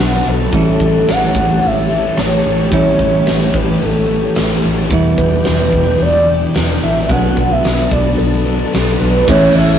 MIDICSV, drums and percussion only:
0, 0, Header, 1, 2, 480
1, 0, Start_track
1, 0, Tempo, 546946
1, 463, Time_signature, 4, 2, 24, 8
1, 8591, End_track
2, 0, Start_track
2, 0, Title_t, "Drums"
2, 459, Note_on_c, 9, 46, 58
2, 462, Note_on_c, 9, 36, 99
2, 546, Note_off_c, 9, 46, 0
2, 550, Note_off_c, 9, 36, 0
2, 703, Note_on_c, 9, 36, 73
2, 791, Note_off_c, 9, 36, 0
2, 943, Note_on_c, 9, 46, 52
2, 954, Note_on_c, 9, 38, 106
2, 1031, Note_off_c, 9, 46, 0
2, 1042, Note_off_c, 9, 38, 0
2, 1184, Note_on_c, 9, 36, 88
2, 1271, Note_off_c, 9, 36, 0
2, 1423, Note_on_c, 9, 46, 53
2, 1511, Note_off_c, 9, 46, 0
2, 1898, Note_on_c, 9, 46, 49
2, 1909, Note_on_c, 9, 38, 102
2, 1986, Note_off_c, 9, 46, 0
2, 1996, Note_off_c, 9, 38, 0
2, 2384, Note_on_c, 9, 46, 49
2, 2385, Note_on_c, 9, 36, 106
2, 2472, Note_off_c, 9, 46, 0
2, 2473, Note_off_c, 9, 36, 0
2, 2626, Note_on_c, 9, 36, 77
2, 2714, Note_off_c, 9, 36, 0
2, 2859, Note_on_c, 9, 46, 50
2, 2870, Note_on_c, 9, 38, 107
2, 2947, Note_off_c, 9, 46, 0
2, 2958, Note_off_c, 9, 38, 0
2, 3106, Note_on_c, 9, 36, 85
2, 3194, Note_off_c, 9, 36, 0
2, 3345, Note_on_c, 9, 46, 50
2, 3433, Note_off_c, 9, 46, 0
2, 3819, Note_on_c, 9, 46, 51
2, 3829, Note_on_c, 9, 38, 108
2, 3907, Note_off_c, 9, 46, 0
2, 3917, Note_off_c, 9, 38, 0
2, 4300, Note_on_c, 9, 46, 53
2, 4305, Note_on_c, 9, 36, 99
2, 4388, Note_off_c, 9, 46, 0
2, 4393, Note_off_c, 9, 36, 0
2, 4545, Note_on_c, 9, 36, 82
2, 4633, Note_off_c, 9, 36, 0
2, 4773, Note_on_c, 9, 46, 53
2, 4784, Note_on_c, 9, 38, 104
2, 4861, Note_off_c, 9, 46, 0
2, 4872, Note_off_c, 9, 38, 0
2, 5024, Note_on_c, 9, 36, 84
2, 5112, Note_off_c, 9, 36, 0
2, 5261, Note_on_c, 9, 46, 50
2, 5349, Note_off_c, 9, 46, 0
2, 5744, Note_on_c, 9, 46, 54
2, 5755, Note_on_c, 9, 38, 104
2, 5832, Note_off_c, 9, 46, 0
2, 5842, Note_off_c, 9, 38, 0
2, 6222, Note_on_c, 9, 46, 51
2, 6226, Note_on_c, 9, 36, 109
2, 6310, Note_off_c, 9, 46, 0
2, 6314, Note_off_c, 9, 36, 0
2, 6468, Note_on_c, 9, 36, 80
2, 6555, Note_off_c, 9, 36, 0
2, 6705, Note_on_c, 9, 46, 48
2, 6715, Note_on_c, 9, 38, 100
2, 6792, Note_off_c, 9, 46, 0
2, 6803, Note_off_c, 9, 38, 0
2, 6946, Note_on_c, 9, 36, 87
2, 7034, Note_off_c, 9, 36, 0
2, 7191, Note_on_c, 9, 46, 46
2, 7278, Note_off_c, 9, 46, 0
2, 7666, Note_on_c, 9, 46, 52
2, 7676, Note_on_c, 9, 38, 110
2, 7754, Note_off_c, 9, 46, 0
2, 7764, Note_off_c, 9, 38, 0
2, 8144, Note_on_c, 9, 36, 115
2, 8144, Note_on_c, 9, 49, 124
2, 8144, Note_on_c, 9, 57, 91
2, 8232, Note_off_c, 9, 36, 0
2, 8232, Note_off_c, 9, 49, 0
2, 8232, Note_off_c, 9, 57, 0
2, 8383, Note_on_c, 9, 57, 69
2, 8471, Note_off_c, 9, 57, 0
2, 8591, End_track
0, 0, End_of_file